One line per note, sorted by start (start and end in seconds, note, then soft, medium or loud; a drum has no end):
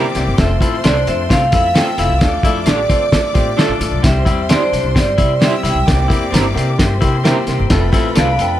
0.00 0.35 C4 medium
0.00 0.37 D5 medium
0.00 0.37 D6 medium
0.15 0.24 C2 medium
0.15 0.31 A#3 loud
0.15 0.32 C4 medium
0.15 0.32 E4 medium
0.15 0.32 G4 loud
0.15 snare soft
0.15 closed hi-hat medium
0.27 0.36 G1 loud
0.37 0.56 F1 loud
0.37 0.54 A3 loud
0.37 0.54 C4 medium
0.37 0.55 F4 medium
0.37 0.55 A4 loud
0.37 1.50 C5 medium
0.37 0.87 E5 medium
0.37 1.51 C6 loud
0.37 kick loud
0.37 snare loud
0.37 closed hi-hat loud
0.60 0.77 A3 loud
0.60 0.77 C4 loud
0.60 0.76 E4 medium
0.60 0.77 F4 loud
0.60 0.78 A4 loud
0.60 kick loud
0.60 closed hi-hat medium
0.84 1.02 C2 loud
0.84 0.96 A3 medium
0.84 1.01 A3 medium
0.84 0.96 C4 medium
0.84 1.01 C4 medium
0.84 1.27 D4 medium
0.84 0.96 F4 medium
0.84 1.01 F4 medium
0.84 0.97 A4 loud
0.84 1.02 C5 medium
0.84 0.96 D5 medium
0.84 snare loud
0.84 closed hi-hat loud
0.97 1.08 C5 medium
1.07 1.25 F2 loud
1.07 1.23 A3 medium
1.07 1.24 C4 medium
1.07 1.24 F4 medium
1.07 1.24 A4 medium
1.07 1.29 E5 loud
1.07 closed hi-hat medium
1.29 1.48 C2 medium
1.29 1.46 A3 medium
1.29 1.44 C4 medium
1.29 1.46 C4 medium
1.29 1.47 F4 medium
1.29 1.47 A4 medium
1.29 1.53 F5 loud
1.29 kick medium
1.29 snare loud
1.29 closed hi-hat loud
1.51 1.80 F2 medium
1.51 1.68 A3 medium
1.51 1.69 C4 medium
1.51 1.68 E4 medium
1.51 1.69 F4 medium
1.51 1.69 A4 medium
1.51 2.21 E5 medium
1.51 1.77 F5 loud
1.51 2.21 E6 medium
1.51 kick loud
1.51 closed hi-hat medium
1.74 1.91 A3 loud
1.74 1.87 A3 medium
1.74 1.92 C4 medium
1.74 1.88 C4 medium
1.74 1.92 F4 medium
1.74 1.88 F4 medium
1.74 1.92 A4 loud
1.74 1.88 A4 medium
1.74 1.99 G5 loud
1.74 snare loud
1.74 closed hi-hat medium
1.97 2.07 F1 medium
1.97 2.14 A3 medium
1.97 2.15 C4 medium
1.97 2.13 E4 medium
1.97 2.15 F4 medium
1.97 2.15 A4 medium
1.97 2.45 F5 loud
1.97 snare soft
1.97 closed hi-hat medium
2.09 2.18 C2 medium
2.21 2.39 D2 loud
2.21 2.38 A3 loud
2.21 2.38 D4 medium
2.21 2.38 F4 medium
2.21 2.39 A4 loud
2.21 4.01 D5 medium
2.21 4.01 D6 loud
2.21 kick loud
2.21 snare loud
2.21 closed hi-hat medium
2.43 2.61 F2 medium
2.43 2.61 A3 loud
2.43 2.61 D4 medium
2.43 2.59 E4 medium
2.43 2.61 F4 loud
2.43 2.61 A4 loud
2.43 2.68 E5 medium
2.43 kick loud
2.43 closed hi-hat medium
2.65 2.84 A1 medium
2.65 2.79 A3 medium
2.65 2.84 A3 medium
2.65 2.79 D4 medium
2.65 2.81 D4 medium
2.65 2.84 D4 medium
2.65 2.79 F4 medium
2.65 2.84 F4 medium
2.65 2.84 G4 medium
2.65 2.79 A4 loud
2.65 3.55 D5 medium
2.65 snare loud
2.65 closed hi-hat loud
2.89 3.08 D3 loud
2.89 3.06 A3 medium
2.89 3.04 C4 medium
2.89 3.06 D4 medium
2.89 3.07 F4 medium
2.89 3.07 A4 medium
2.89 kick medium
2.89 closed hi-hat medium
3.11 3.31 D3 loud
3.11 3.20 F3 medium
3.11 3.29 A3 medium
3.11 3.29 D4 medium
3.11 3.20 D4 medium
3.11 3.29 F4 medium
3.11 3.29 A4 medium
3.11 3.20 A4 loud
3.11 kick medium
3.11 snare loud
3.11 closed hi-hat loud
3.33 3.53 A2 medium
3.33 3.51 A3 medium
3.33 3.49 C4 medium
3.33 3.51 D4 medium
3.33 3.52 F4 medium
3.33 3.52 G4 loud
3.33 kick loud
3.33 closed hi-hat medium
3.57 3.92 F3 medium
3.57 3.70 A3 medium
3.57 3.75 A3 loud
3.57 4.01 D4 medium
3.57 3.70 D4 medium
3.57 3.75 D4 loud
3.57 3.92 D4 medium
3.57 3.71 F4 medium
3.57 3.75 F4 loud
3.57 3.71 A4 loud
3.57 3.75 A4 loud
3.57 3.92 A4 loud
3.57 snare loud
3.57 closed hi-hat medium
3.68 3.78 A1 medium
3.80 3.89 A1 medium
3.80 3.97 A3 medium
3.80 3.98 D4 medium
3.80 3.98 F4 medium
3.80 3.98 A4 loud
3.80 closed hi-hat medium
3.91 4.01 B1 medium
4.02 4.22 C2 loud
4.02 4.20 G3 loud
4.02 4.20 C4 medium
4.02 4.21 E4 medium
4.02 4.21 G4 loud
4.02 5.39 C5 medium
4.02 4.52 E5 loud
4.02 5.39 C6 medium
4.02 kick loud
4.02 snare loud
4.02 closed hi-hat loud
4.25 4.43 G3 loud
4.25 4.43 C4 medium
4.25 4.40 E4 medium
4.25 4.43 E4 loud
4.25 4.44 G4 loud
4.25 kick loud
4.25 closed hi-hat medium
4.49 4.66 G3 medium
4.49 4.62 C4 medium
4.49 4.67 C4 medium
4.49 4.93 D4 medium
4.49 4.62 E4 medium
4.49 4.67 E4 medium
4.49 4.62 G4 medium
4.49 4.67 G4 medium
4.49 4.63 C5 medium
4.49 4.63 D5 loud
4.49 snare loud
4.49 closed hi-hat loud
4.63 4.98 C5 medium
4.72 4.82 B1 medium
4.72 4.89 G3 medium
4.72 4.89 C4 medium
4.72 4.90 E4 medium
4.72 4.90 G4 medium
4.72 closed hi-hat medium
4.83 4.93 C2 medium
4.95 5.14 G1 medium
4.95 5.12 G3 medium
4.95 5.10 C4 medium
4.95 5.13 C4 medium
4.95 5.13 E4 medium
4.95 5.13 G4 medium
4.95 5.44 D5 loud
4.95 kick medium
4.95 snare loud
4.95 closed hi-hat loud
5.18 5.45 C3 medium
5.18 5.35 G3 medium
5.18 5.35 C4 medium
5.18 5.33 E4 medium
5.18 5.36 E4 medium
5.18 5.36 G4 medium
5.18 kick loud
5.18 closed hi-hat medium
5.41 5.58 G3 medium
5.41 5.53 C4 medium
5.41 5.58 C4 medium
5.41 5.54 E4 medium
5.41 5.58 E4 medium
5.41 5.54 G4 medium
5.41 5.59 G4 loud
5.41 5.54 C5 loud
5.41 5.87 E5 medium
5.41 5.87 E6 medium
5.41 snare loud
5.41 closed hi-hat medium
5.45 5.67 E5 loud
5.63 5.73 C2 medium
5.63 5.81 G3 medium
5.63 5.81 C4 medium
5.63 5.78 E4 medium
5.63 5.81 E4 medium
5.63 5.82 G4 medium
5.63 snare soft
5.63 closed hi-hat medium
5.69 6.09 G5 loud
5.75 5.84 B1 medium
5.87 6.05 C2 loud
5.87 6.04 A#3 loud
5.87 6.04 C4 medium
5.87 6.04 E4 medium
5.87 6.05 G4 loud
5.87 6.77 D5 medium
5.87 6.77 D6 medium
5.87 kick loud
5.87 snare loud
5.87 closed hi-hat loud
6.08 6.26 A#3 loud
6.08 6.26 C4 loud
6.08 6.23 E4 medium
6.08 6.27 E4 medium
6.08 6.27 G4 loud
6.08 kick loud
6.08 closed hi-hat medium
6.31 6.50 G1 medium
6.31 6.45 G3 medium
6.31 6.49 A#3 medium
6.31 6.46 C4 medium
6.31 6.45 C4 medium
6.31 6.50 C4 medium
6.31 6.45 E4 medium
6.31 6.50 E4 medium
6.31 6.50 G4 loud
6.31 6.46 A#4 medium
6.31 closed hi-hat medium
6.35 snare loud
6.54 6.73 C3 medium
6.54 6.72 A#3 loud
6.54 6.69 C4 medium
6.54 6.72 C4 medium
6.54 6.72 E4 medium
6.54 6.72 G4 loud
6.54 closed hi-hat medium
6.78 6.97 G1 loud
6.78 6.95 A#3 medium
6.78 6.95 C4 medium
6.78 6.96 E4 medium
6.78 6.96 G4 loud
6.78 7.69 C5 medium
6.78 7.69 C6 medium
6.78 kick medium
6.78 snare loud
6.78 closed hi-hat medium
7.01 7.29 C3 medium
7.01 7.18 A#3 medium
7.01 7.18 C4 medium
7.01 7.16 E4 medium
7.01 7.18 E4 medium
7.01 7.19 G4 loud
7.01 kick loud
7.01 closed hi-hat medium
7.24 7.36 G3 medium
7.24 7.41 A#3 loud
7.24 7.68 C4 medium
7.24 7.37 C4 medium
7.24 7.41 C4 loud
7.24 7.37 E4 medium
7.24 7.41 E4 loud
7.24 7.42 G4 loud
7.24 7.37 A#4 loud
7.24 snare loud
7.24 closed hi-hat medium
7.47 7.56 C2 medium
7.47 7.64 A#3 loud
7.47 7.64 C4 medium
7.47 7.64 E4 medium
7.47 7.65 G4 loud
7.47 snare soft
7.47 closed hi-hat medium
7.59 7.68 G1 medium
7.70 7.88 F1 loud
7.70 7.87 A3 loud
7.70 7.87 C4 loud
7.70 7.87 F4 loud
7.70 7.87 A4 loud
7.70 8.60 B4 medium
7.70 8.60 B5 loud
7.70 kick loud
7.70 snare loud
7.70 closed hi-hat medium
7.92 8.09 A3 loud
7.92 8.09 C4 loud
7.92 8.08 E4 medium
7.92 8.10 F4 loud
7.92 8.10 A4 loud
7.92 kick loud
7.92 closed hi-hat medium
8.15 8.34 C2 loud
8.15 8.28 A3 medium
8.15 8.32 A3 medium
8.15 8.28 C4 medium
8.15 8.33 C4 medium
8.15 8.59 D4 medium
8.15 8.28 F4 medium
8.15 8.33 F4 medium
8.15 8.28 A4 medium
8.15 8.33 A4 medium
8.15 8.41 F5 loud
8.15 snare loud
8.15 closed hi-hat loud
8.38 8.56 F2 loud
8.38 8.55 A3 medium
8.38 8.56 C4 medium
8.38 8.56 F4 medium
8.38 8.56 A4 medium
8.38 8.60 G5 loud
8.38 closed hi-hat medium